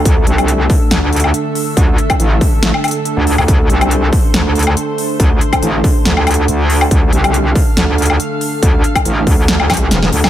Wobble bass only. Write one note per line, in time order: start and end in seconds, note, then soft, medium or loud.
0.05 0.25 D2 loud
0.27 0.68 C2 loud
0.91 1.32 D2 loud
1.77 1.97 D2 medium
2.20 2.40 A1 loud
2.63 2.72 A1 loud
3.17 3.37 D2 loud
3.38 3.47 D2 loud
3.48 3.68 D2 medium
3.70 4.11 C2 loud
4.34 4.75 D2 loud
5.20 5.40 D2 medium
5.63 5.82 A1 loud
6.05 6.47 D2 loud
6.48 6.90 D2 loud
6.91 7.11 D2 loud
7.13 7.54 C2 loud
7.77 8.18 D2 loud
8.63 8.82 D2 medium
9.05 9.25 A1 loud
9.27 9.71 D2 loud
9.71 9.90 C#2 loud
9.91 10.11 E1 loud
10.13 10.30 D2 loud